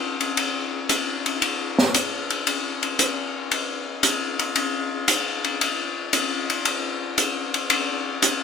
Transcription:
0.20 ride
0.37 ride
0.89 hi-hat pedal, ride
1.26 ride
1.42 ride
1.79 snare
1.94 hi-hat pedal, ride
2.30 ride
2.47 ride
2.83 ride
2.99 hi-hat pedal, ride
3.51 ride
4.03 hi-hat pedal, ride
4.39 ride
4.56 ride
5.08 hi-hat pedal, ride
5.44 ride
5.61 ride
6.13 hi-hat pedal, ride
6.50 ride
6.65 ride
7.18 hi-hat pedal, ride
7.54 ride
7.70 ride
8.22 hi-hat pedal, ride

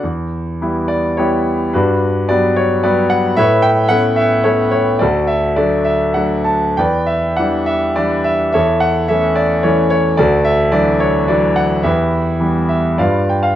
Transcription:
0.03 E2
0.61 G3 B3 E4
0.88 D5
1.17 G3 B3 E4 G4 C#5
1.73 G2 D4 F#4 B4
2.29 F#3 G3 B3 D5
2.56 C#5
2.84 F#3 G3 B3 D5
3.10 F#5
3.37 A2 B4 C#5 E5
3.62 G5
3.88 A3 B3 C#4 F#5
4.16 E5
4.44 A3 B3 C#4 C#5
4.71 C#5
4.99 D2 F#4 A4 D5
5.27 E5
5.56 F#3 A3 D4 D5
5.84 E5
6.14 F#3 A3 D4 F#5
6.44 A5
6.77 E2 B4 D5 G5
7.06 E5
7.37 E3 G3 D4 F#5
7.66 E5
7.96 E3 G3 D4 D5
8.24 E5
8.52 E2 A4 C#5 E5
8.80 F#5
9.08 E3 A3 C#4 E5
9.35 D5
9.63 E3 A3 C#4 C#5
9.90 C#5
10.17 D2 F#4 A4 D5
10.44 E5
10.72 E3 F#3 D4 D5
11.00 C#5
11.28 E3 F#3 D4 D5
11.56 F#5
11.83 E2 G4 B4 E5
12.40 E3 G3 B3
12.69 E5
12.98 G2 F4 B4 D5 F5
13.29 G5
13.43 F5

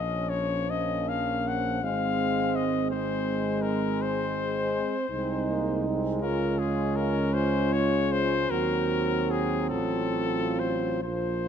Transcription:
Already playing: A#1 F3 C#4 D#5
0.29 C#5
0.67 A#3 C#4 D#5
1.08 F5
1.48 F#5
1.83 G#1 G#3 C4 F5
2.56 D#5
2.91 G#3 C5
3.62 A#4
4.02 C5
5.10 C2 G#3 C4 D#4
5.48 A#3
5.87 C4
6.22 C#2 C#4 F4 A#4
6.59 G#4
6.96 A#4
7.34 F4 C5
7.73 C#5
8.12 C5
8.50 D#2 F#3 C4 F#4 A#4
9.31 G#4
9.70 A1 F4 A4
10.59 C5
11.02 A#1 F3 A#3 F4 C5

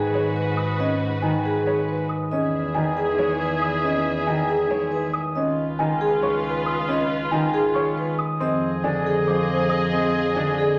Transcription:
Already playing: G#2 D#3 G#3 F#4 G#4 B4
0.14 G#3 C#5
0.36 B4
0.57 D#6
0.79 C#4 D#5
1.22 D#3 D#4 G#5
1.45 G#4
1.66 G#3 C#5
1.89 B4
2.09 D#6
2.31 E2 C#4 G#4 D#5 E5
2.74 D#3 D#4 G#5
2.97 G#4
3.18 G#3 C#5
3.41 B4
3.62 D#6
3.84 C#4 D#5
4.27 D#3 D#4 G#5
4.49 G#4
4.70 G#3 C#5
4.92 B4
5.14 D#6
5.36 C#2 C#4 F4 B4 D#5
5.79 D#3 D#4 G#5
6.01 G#4
6.22 G#3 C#5 C#6
6.44 B4
6.66 D#6
6.88 C#4 D#5
7.31 D#3 D#4 G#5
7.54 G#4
7.75 G#3 C#5 C#6
7.98 B4
8.19 D#6
8.40 F2 C4 G#4 D#5
8.84 D3 D4 G#5
9.06 G#4
9.27 F3 C5 D6
9.50 C5
9.70 D#6
9.93 C4 D#5
10.35 D3 D4 G#5
10.58 G#4

